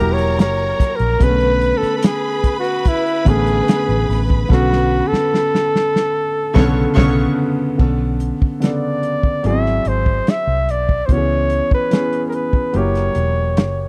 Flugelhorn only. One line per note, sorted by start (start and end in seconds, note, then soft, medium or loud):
0.00 0.15 A#4 medium
0.13 0.40 C#5 medium
0.41 0.97 C#5 medium
0.96 1.25 A#4 loud
1.23 1.79 B4 loud
1.77 1.97 A4 medium
1.98 2.07 A4 medium
2.05 2.59 G#4 medium
2.60 2.90 F#4 medium
2.88 3.30 E4 medium
3.29 4.24 G#4 medium
4.53 5.09 F#4 loud
5.08 7.12 A4 loud
8.64 9.48 D5 medium
9.47 9.90 E5 medium
9.88 10.31 C5 medium
10.30 10.72 E5 medium
10.71 11.07 D5 medium
11.06 11.14 C5 medium
11.12 11.72 C#5 loud
11.74 12.24 B4 medium
12.29 12.36 A#4 medium
12.35 12.79 B4 medium
12.77 13.89 C#5 medium